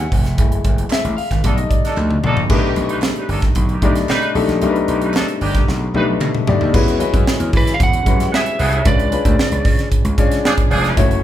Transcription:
Already playing: grand piano E3 B3 D#4 D#5 E5 G#5 A5
0.00 grand piano F#5
0.12 slap bass F1, kick, open hi-hat
0.25 snare, closed hi-hat
0.38 slap bass F#1, grand piano G#3 A3 E4, kick, closed hi-hat
0.52 closed hi-hat
0.64 slap bass F#1, kick, closed hi-hat
0.78 closed hi-hat
0.90 grand piano E5, snare, clap
1.04 slap bass A1, closed hi-hat
1.17 grand piano F5, open hi-hat
1.31 slap bass G#1, kick, snare, closed hi-hat
1.44 slap bass B1, horn section D#3 D4 A4, grand piano G3 A3 D#4, kick, closed hi-hat
1.56 grand piano D#5, closed hi-hat
1.69 grand piano D5, kick, closed hi-hat
1.85 horn section D#3 D4 A4, snare, closed hi-hat
1.97 slap bass D2, clap, high tom
2.11 mid tom
2.23 slap bass A#1, horn section D#3 D4 A4, mid tom
2.37 floor tom
2.50 slap bass B1, horn section D#3 D4 G4, grand piano A3 D4 D#4 G4 B4, kick, crash
2.76 slap bass B1, closed hi-hat
2.89 horn section G3 D#4 B4, closed hi-hat
3.02 snare, clap
3.16 horn section G3 D#4 B4, closed hi-hat
3.29 slap bass G1, horn section D#3 D4 A4, open hi-hat
3.42 kick, snare, closed hi-hat
3.55 slap bass B1, kick, closed hi-hat
3.69 horn section D#3 D4 G4, closed hi-hat
3.82 slap bass B1, horn section D#3 D4 G4, grand piano A3 D4 D#4 G4 D5, kick, closed hi-hat
3.95 snare, closed hi-hat
4.08 slap bass B2, horn section G3 D#4 B4, snare, clap
4.22 closed hi-hat
4.34 slap bass B1, grand piano A3 D4 D#4 G4 A4, open hi-hat
4.49 slap bass A#1, snare, closed hi-hat
4.62 slap bass B1, grand piano A3 D4 D#4 G4 A#4, closed hi-hat
4.69 grand piano B4
4.76 closed hi-hat
4.88 slap bass B1, horn section D#3 D4 G4, closed hi-hat
5.01 horn section G3 D#4 B4, closed hi-hat
5.14 horn section D#3 D4 A4, snare, clap
5.28 closed hi-hat
5.41 slap bass G1, horn section D#3 D4 G4, open hi-hat
5.55 kick, snare, closed hi-hat
5.68 slap bass B1, snare
5.94 slap bass B1, horn section G3 D#4 B4, grand piano A3 D4 D#4 G4 B4, high tom
6.20 slap bass B2, clap, mid tom
6.35 mid tom
6.47 slap bass B1, grand piano A3 D4 D#4 G4 D5, floor tom
6.61 slap bass D#2, floor tom
6.73 slap bass E2, grand piano G#3 C#4 E4 F#4 B4, kick, crash
6.88 closed hi-hat
6.99 grand piano G#3 C#4 E4 F#4 B4, closed hi-hat
7.13 slap bass F#2, kick, closed hi-hat
7.27 snare
7.40 slap bass E2, closed hi-hat
7.53 slap bass E3, lead electric guitar B4, kick, open hi-hat
7.67 snare, closed hi-hat
7.74 lead electric guitar F5
7.80 slap bass E2, lead electric guitar F#5, kick, closed hi-hat
7.93 closed hi-hat
8.06 slap bass F#2, grand piano G3 C#4 E4 F#4 B4, kick, closed hi-hat
8.12 grand piano G#3
8.20 snare, closed hi-hat
8.32 horn section C#3 B3 G#4, lead electric guitar E5, snare
8.46 closed hi-hat
8.59 slap bass C2, horn section C#3 B3 G#4, open hi-hat
8.72 closed hi-hat
8.85 slap bass C#2, grand piano G#3 C#4 D4 F4 B4, lead electric guitar D5, kick, closed hi-hat
8.99 closed hi-hat
9.11 grand piano G#3 C#4 D4 F4 B4, closed hi-hat
9.25 slap bass D2, kick, closed hi-hat
9.39 snare
9.52 slap bass C#2, closed hi-hat
9.65 slap bass C#3, kick, open hi-hat
9.79 snare, closed hi-hat
9.92 kick, closed hi-hat
10.05 slap bass C#2, closed hi-hat
10.18 slap bass C#3, grand piano G#3 C#4 D4 F4 D5, kick, closed hi-hat
10.31 snare, closed hi-hat
10.44 horn section F3 D4 G#4, snare
10.57 kick, closed hi-hat
10.69 slap bass F1, horn section F3 D4 G#4, open hi-hat
10.84 snare, closed hi-hat
10.97 slap bass F#1, grand piano A3 C#4 E4 F#4 C#5, kick, closed hi-hat
11.11 closed hi-hat

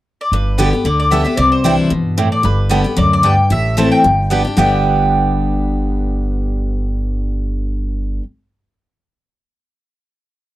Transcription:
0.21 mandolin D5
0.32 upright bass G1, steel-string acoustic guitar G2, mandolin B4
0.58 steel-string acoustic guitar D3 G3 B3 G4, mandolin B3 G4 D5 A5
0.73 steel-string acoustic guitar B3 G4
0.85 upright bass D2, steel-string acoustic guitar D3, mandolin D5
1.00 mandolin D5
1.11 steel-string acoustic guitar D3 G3 B3 G4, mandolin B3 G4 D5 E5 A5
1.25 steel-string acoustic guitar B3 G4, mandolin E5
1.37 upright bass C2, steel-string acoustic guitar C3, mandolin D5
1.52 mandolin C5
1.64 steel-string acoustic guitar E3 G3 D4 E4, mandolin C4 E4 D5 G5
1.90 upright bass G2, steel-string acoustic guitar B2
2.17 steel-string acoustic guitar A2, mandolin C4 E4 D5 G5
2.32 mandolin D5
2.43 upright bass G1, steel-string acoustic guitar G2, mandolin B4
2.69 steel-string acoustic guitar D3 G3 B3 G4, mandolin B3 G4 D5 A5
2.84 steel-string acoustic guitar B3 G4
2.97 upright bass D2, steel-string acoustic guitar F#2, mandolin D5
3.13 mandolin D5
3.23 steel-string acoustic guitar G2, mandolin B3 G4 D5 G5 A5
3.50 upright bass A1, steel-string acoustic guitar A2, mandolin E5
3.77 steel-string acoustic guitar E3 A3 C4 E4, mandolin A3 E4 C5 A5
3.92 mandolin G5
4.04 upright bass G1, steel-string acoustic guitar G2
4.30 steel-string acoustic guitar G3 B3 D4 G4, mandolin B3 G4 D5 G5
4.45 steel-string acoustic guitar D4 G4
4.57 upright bass G1, steel-string acoustic guitar G2 D3 G3 B3 D4 G4, mandolin B3 G4 D5 G5

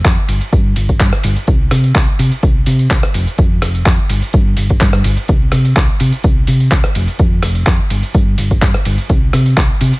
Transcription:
0.05 fingered electric bass F2, kick, clap, closed hi-hat, tambourine
0.28 fingered electric bass G1, open hi-hat, ride, tambourine
0.41 closed hi-hat, tambourine
0.53 fingered electric bass G2, kick, closed hi-hat, tambourine
0.76 fingered electric bass G1, open hi-hat, ride, tambourine
0.89 kick, closed hi-hat, tambourine
1.00 fingered electric bass G2, kick, clap, closed hi-hat, tambourine
1.13 cross-stick, closed hi-hat, tambourine
1.23 fingered electric bass G1, open hi-hat, ride, tambourine
1.36 closed hi-hat, tambourine
1.47 fingered electric bass C2, kick, closed hi-hat, tambourine
1.71 fingered electric bass C3, cross-stick, open hi-hat, ride, tambourine
1.84 closed hi-hat, tambourine
1.95 fingered electric bass C2, kick, clap, closed hi-hat, tambourine
2.19 fingered electric bass C3, open hi-hat, ride, tambourine
2.32 closed hi-hat, tambourine
2.43 fingered electric bass C2, kick, closed hi-hat, tambourine
2.66 fingered electric bass C3, open hi-hat, ride, tambourine
2.79 closed hi-hat, tambourine
2.90 fingered electric bass C2, kick, clap, closed hi-hat, tambourine
3.03 cross-stick, closed hi-hat, tambourine
3.14 fingered electric bass F1, open hi-hat, ride, tambourine
3.27 closed hi-hat, tambourine
3.38 fingered electric bass F2, kick, closed hi-hat, tambourine
3.62 fingered electric bass F1, cross-stick, open hi-hat, ride, tambourine
3.75 closed hi-hat, tambourine
3.86 fingered electric bass F2, kick, clap, closed hi-hat, tambourine
4.09 fingered electric bass G1, open hi-hat, ride, tambourine
4.22 closed hi-hat, tambourine
4.33 fingered electric bass G2, kick, closed hi-hat, tambourine
4.57 fingered electric bass G1, open hi-hat, ride, tambourine
4.69 kick, closed hi-hat, tambourine
4.80 fingered electric bass G2, kick, clap, closed hi-hat, tambourine
4.93 cross-stick, closed hi-hat, tambourine
5.04 fingered electric bass G1, open hi-hat, ride, tambourine
5.17 closed hi-hat, tambourine
5.28 fingered electric bass C2, kick, closed hi-hat, tambourine
5.52 fingered electric bass C3, cross-stick, open hi-hat, ride, tambourine
5.65 closed hi-hat, tambourine
5.76 fingered electric bass C2, kick, clap, closed hi-hat, tambourine
6.00 fingered electric bass C3, open hi-hat, ride, tambourine
6.13 closed hi-hat, tambourine
6.24 fingered electric bass C2, kick, closed hi-hat, tambourine
6.47 fingered electric bass C3, open hi-hat, ride, tambourine
6.60 closed hi-hat, tambourine
6.71 fingered electric bass C2, kick, clap, closed hi-hat, tambourine
6.84 cross-stick, closed hi-hat, tambourine
6.95 fingered electric bass F1, open hi-hat, ride, tambourine
7.08 closed hi-hat, tambourine
7.19 fingered electric bass F2, kick, closed hi-hat, tambourine
7.43 fingered electric bass F1, cross-stick, open hi-hat, ride, tambourine
7.55 closed hi-hat, tambourine
7.66 fingered electric bass F2, kick, clap, closed hi-hat, tambourine
7.90 fingered electric bass G1, open hi-hat, ride, tambourine
8.03 closed hi-hat, tambourine
8.14 fingered electric bass G2, kick, closed hi-hat, tambourine
8.38 fingered electric bass G1, open hi-hat, ride, tambourine
8.51 kick, closed hi-hat, tambourine
8.62 fingered electric bass G2, kick, clap, closed hi-hat, tambourine
8.74 cross-stick, closed hi-hat, tambourine
8.85 fingered electric bass G1, open hi-hat, ride, tambourine
8.98 closed hi-hat, tambourine
9.09 fingered electric bass C2, kick, closed hi-hat, tambourine
9.33 fingered electric bass C3, cross-stick, open hi-hat, ride, tambourine
9.46 closed hi-hat, tambourine
9.57 fingered electric bass C2, kick, clap, closed hi-hat, tambourine
9.81 fingered electric bass C3, open hi-hat, ride, tambourine
9.93 closed hi-hat, tambourine

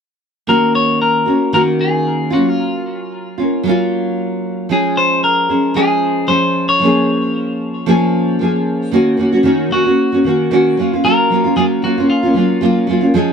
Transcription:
0.47 nylon-string guitar D#3 A#3 C#4 F#4, clean electric guitar A#4
0.75 clean electric guitar C#5
1.02 clean electric guitar A#4
1.26 nylon-string guitar A#3 C#4 F#4
1.53 nylon-string guitar D#3 A#3 C#4 F#4, clean electric guitar A#4
1.81 clean electric guitar G#4
2.30 nylon-string guitar C#4 F4, clean electric guitar F#4
2.34 nylon-string guitar F#3 A#3
2.48 clean electric guitar F4
3.38 nylon-string guitar A#3 C#4 F4
3.63 nylon-string guitar F#3 A#3 C#4
3.69 nylon-string guitar F4
4.69 nylon-string guitar F3 G#3 C#4 G#4, clean electric guitar G#4
4.97 clean electric guitar C5
5.24 clean electric guitar A#4
5.49 nylon-string guitar G#3 C#4 G#4
5.74 nylon-string guitar F3 G#3 C#4 G#4, clean electric guitar G#4
6.27 nylon-string guitar F3 G#3 C#4 G#4, clean electric guitar C5
6.69 clean electric guitar C#5
6.80 nylon-string guitar F3 A#3 C#4
6.85 nylon-string guitar G#4
7.86 nylon-string guitar F3 A#3 C#4 G#4
8.39 nylon-string guitar F3 A#3 C#4 G#4
8.91 nylon-string guitar D#3 A#3 C#4 F#4
9.17 nylon-string guitar D#3 A#3 C#4 F#4
9.33 nylon-string guitar A#3 C#4 F#4
9.43 nylon-string guitar D#3 A#3 C#4 F#4
9.71 nylon-string guitar D#3 A#3 C#4 F#4, clean electric guitar F#4
9.85 nylon-string guitar A#3 C#4 F#4
10.12 nylon-string guitar A#3 C#4 F#4
10.24 nylon-string guitar D#3 A#3 C#4 F#4
10.51 nylon-string guitar D#3 A#3 C#4 F#4
10.77 nylon-string guitar F#3 A#3 C#4 F4
10.93 nylon-string guitar A#3 C#4 F4
11.04 nylon-string guitar F#3 A#3 C#4 F4, clean electric guitar A#4
11.30 nylon-string guitar F#3 A#3 C#4 F4
11.44 nylon-string guitar A#3 C#4 F4
11.56 nylon-string guitar F#3 A#3 C#4 F4, clean electric guitar G#4
11.83 nylon-string guitar F#3 A#3 C#4 F4, clean electric guitar F#4
11.98 nylon-string guitar A#3 C#4 F4
12.10 clean electric guitar F4
12.23 nylon-string guitar A#3 C#4 F4
12.34 nylon-string guitar F#3 A#3 C#4 F4
12.61 nylon-string guitar F#3 A#3 C#4 F4
12.87 nylon-string guitar F#3 A#3 C#4 F4
13.01 nylon-string guitar A#3 C#4 F4
13.14 nylon-string guitar F3 G#3 C#4 G#4

